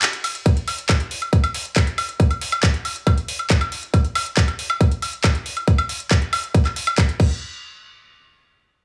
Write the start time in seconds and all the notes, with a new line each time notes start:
0.02 clap, closed hi-hat
0.13 closed hi-hat
0.24 open hi-hat, ride, high woodblock
0.35 closed hi-hat
0.46 kick, closed hi-hat
0.57 closed hi-hat
0.68 open hi-hat, high woodblock
0.78 closed hi-hat
0.89 kick, clap, closed hi-hat, high woodblock
1.00 closed hi-hat
1.11 open hi-hat
1.22 closed hi-hat, high woodblock
1.33 kick, closed hi-hat
1.44 closed hi-hat, high woodblock
1.54 open hi-hat
1.65 closed hi-hat
1.76 kick, clap, closed hi-hat, high woodblock
1.87 closed hi-hat
1.98 open hi-hat, high woodblock
2.09 closed hi-hat
2.20 kick, closed hi-hat
2.31 closed hi-hat, high woodblock
2.41 open hi-hat
2.52 closed hi-hat, high woodblock
2.63 kick, clap, closed hi-hat
2.74 closed hi-hat
2.85 open hi-hat, high woodblock
2.96 closed hi-hat
3.07 kick, closed hi-hat, high woodblock
3.18 closed hi-hat
3.28 open hi-hat
3.39 closed hi-hat, high woodblock
3.50 kick, clap, closed hi-hat
3.61 closed hi-hat, high woodblock
3.72 open hi-hat
3.83 closed hi-hat
3.94 kick, closed hi-hat, high woodblock
4.05 closed hi-hat
4.15 open hi-hat, high woodblock
4.26 closed hi-hat
4.37 kick, clap, closed hi-hat
4.48 closed hi-hat, high woodblock
4.59 open hi-hat
4.70 closed hi-hat, high woodblock
4.81 kick, closed hi-hat
4.92 closed hi-hat
5.02 open hi-hat, high woodblock
5.13 closed hi-hat
5.24 kick, clap, closed hi-hat, high woodblock
5.35 closed hi-hat
5.46 open hi-hat
5.57 closed hi-hat, high woodblock
5.68 kick, closed hi-hat
5.78 closed hi-hat, high woodblock
5.89 open hi-hat
6.00 closed hi-hat
6.11 kick, clap, closed hi-hat, high woodblock
6.22 closed hi-hat
6.33 open hi-hat, high woodblock
6.44 closed hi-hat
6.55 kick, closed hi-hat
6.65 clap, closed hi-hat, high woodblock
6.76 open hi-hat
6.87 closed hi-hat, high woodblock
6.98 kick, clap, closed hi-hat
7.09 closed hi-hat
7.20 kick, crash